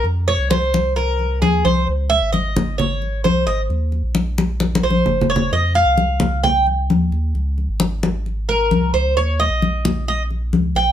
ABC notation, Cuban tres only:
X:1
M:4/4
L:1/8
Q:1/4=132
K:Fm
V:1 name="Cuban tres"
z d c2 B2 A c | z _f e2 d2 c e | z4 z c2 d | e f3 g z3 |
z4 z B2 c | d e3 e z2 g |]